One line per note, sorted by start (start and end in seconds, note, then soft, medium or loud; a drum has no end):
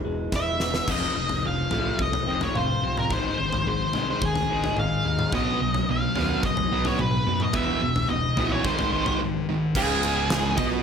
0.00 0.89 E3 medium
0.00 0.31 E4 medium
0.05 0.28 E1 medium
0.05 0.89 G#3 medium
0.32 0.78 E1 medium
0.32 0.89 E4 medium
0.32 0.91 E5 medium
0.32 kick loud
0.32 snare medium
0.60 0.89 B3 medium
0.60 snare medium
0.74 snare medium
0.88 1.05 F1 medium
0.88 1.15 F2 medium
0.88 2.28 F2 medium
0.88 1.15 C3 loud
0.88 1.15 F3 medium
0.88 1.46 D#5 medium
0.88 kick medium
0.88 floor tom medium
0.88 crash loud
1.16 1.33 F1 medium
1.16 1.42 F2 medium
1.16 1.42 C3 medium
1.29 floor tom medium
1.44 1.61 F1 medium
1.44 1.69 F2 medium
1.44 1.70 C3 medium
1.44 1.99 F3 medium
1.44 1.98 F5 medium
1.71 1.89 A1 medium
1.71 1.98 F2 medium
1.71 1.98 C3 medium
1.71 1.99 F3 medium
1.71 3.11 A3 medium
1.71 floor tom medium
1.99 2.16 C2 medium
1.99 2.25 F2 medium
1.99 2.25 C3 medium
1.99 3.11 F3 medium
1.99 2.44 D#5 medium
1.99 kick loud
2.13 floor tom medium
2.27 2.44 F1 medium
2.27 2.54 F2 medium
2.27 2.54 C3 medium
2.27 2.54 F3 medium
2.27 2.81 C4 medium
2.41 2.57 C#5 medium
2.41 floor tom medium
2.55 2.72 F1 medium
2.55 2.81 F2 medium
2.55 2.81 C3 medium
2.55 3.11 F4 medium
2.55 2.98 C5 medium
2.55 mid tom medium
2.83 3.00 C2 medium
2.83 3.08 F2 medium
2.83 3.09 C3 medium
2.83 3.11 C4 medium
2.97 3.13 A#4 medium
2.97 mid tom medium
3.10 3.28 G#1 medium
3.10 4.50 G#2 medium
3.10 3.37 G#2 medium
3.10 3.37 D#3 medium
3.10 3.38 G#3 loud
3.10 3.67 C5 medium
3.10 kick medium
3.10 floor tom medium
3.39 3.56 G#1 medium
3.39 3.64 G#2 medium
3.39 3.64 D#3 medium
3.53 floor tom medium
3.66 3.84 G#1 medium
3.66 3.92 G#2 medium
3.66 3.92 D#3 medium
3.66 4.21 G#3 medium
3.66 4.06 C5 medium
3.93 4.12 C2 medium
3.93 4.21 G#2 medium
3.93 4.21 D#3 medium
3.93 4.21 G#3 medium
3.93 5.33 C4 medium
3.93 floor tom medium
4.11 4.23 C5 medium
4.22 4.39 D#1 medium
4.22 4.47 G#2 medium
4.22 4.47 D#3 medium
4.22 5.33 G#3 medium
4.22 4.76 G#4 medium
4.22 kick loud
4.35 floor tom medium
4.50 4.67 G#1 medium
4.50 4.76 G#2 medium
4.50 4.76 D#3 medium
4.50 4.76 G#3 medium
4.50 5.04 D#4 medium
4.64 floor tom medium
4.77 4.95 G#1 medium
4.77 5.03 G#2 medium
4.77 5.03 D#3 medium
4.77 5.33 G#4 medium
4.77 5.30 F5 medium
4.77 mid tom medium
5.04 5.22 D#2 medium
5.04 5.30 G#2 medium
5.04 5.30 D#3 medium
5.04 5.33 D#4 medium
5.19 mid tom medium
5.32 5.50 B1 medium
5.32 5.59 B2 medium
5.32 5.59 F#3 loud
5.32 5.59 B3 loud
5.32 5.90 D#5 medium
5.32 kick medium
5.32 floor tom medium
5.60 5.78 B1 medium
5.60 5.86 B2 medium
5.60 5.86 F#3 medium
5.74 floor tom medium
5.88 6.06 B1 medium
5.88 6.13 B2 medium
5.88 6.14 F#3 medium
5.88 6.45 F5 medium
6.16 6.34 D#2 medium
6.16 6.42 B2 medium
6.16 6.43 F#3 medium
6.16 6.43 B3 medium
6.16 floor tom medium
6.43 6.61 F#1 medium
6.43 6.69 B2 medium
6.43 6.69 F#3 medium
6.43 6.84 D#5 medium
6.43 kick loud
6.57 floor tom medium
6.72 6.89 B1 medium
6.72 6.98 B2 medium
6.72 6.98 F#3 medium
6.72 6.98 B3 medium
6.85 6.99 C#5 medium
6.85 floor tom medium
6.99 7.16 B1 medium
6.99 7.24 B2 medium
6.99 7.24 F#3 medium
6.99 7.43 B4 medium
6.99 mid tom medium
7.26 7.44 F#2 medium
7.26 7.52 B2 medium
7.26 7.52 F#3 medium
7.40 7.54 D#5 medium
7.40 mid tom medium
7.53 7.71 E1 medium
7.53 7.80 E2 medium
7.53 7.80 B2 medium
7.53 7.80 E3 loud
7.53 8.07 E5 medium
7.53 kick loud
7.53 floor tom medium
7.81 7.99 E1 medium
7.81 8.07 E2 medium
7.81 8.07 B2 medium
7.96 floor tom medium
8.09 8.26 E1 medium
8.09 8.34 E2 medium
8.09 8.35 B2 medium
8.09 8.53 D#5 medium
8.37 8.54 A#1 medium
8.37 8.63 E2 medium
8.37 8.63 B2 medium
8.37 8.64 E3 medium
8.37 floor tom medium
8.52 8.65 C#5 medium
8.64 8.82 G#1 medium
8.64 8.91 G#2 medium
8.64 8.91 D#3 medium
8.64 8.92 G#3 loud
8.64 9.17 C5 medium
8.64 kick loud
8.79 floor tom medium
8.92 9.09 G#1 medium
8.92 9.19 G#2 medium
8.92 9.19 D#3 medium
8.92 9.19 G#3 medium
9.06 floor tom medium
9.21 9.46 G#2 medium
9.21 9.46 D#3 medium
9.49 9.73 G#2 medium
9.49 9.74 D#3 medium
9.75 10.54 C#1 medium
9.75 10.58 C#2 loud
9.75 10.83 C#3 medium
9.75 10.58 C#3 loud
9.75 10.83 F3 medium
9.75 10.83 G#3 medium
9.75 10.83 F4 medium
9.75 10.83 G#4 medium
9.75 10.55 G#4 medium
9.75 kick medium
9.75 crash loud
10.03 ride medium
10.30 snare loud
10.30 ride medium
10.57 10.83 B1 medium
10.57 10.83 B2 medium
10.57 10.83 B3 medium
10.57 10.65 D#5 loud
10.57 kick loud
10.57 ride medium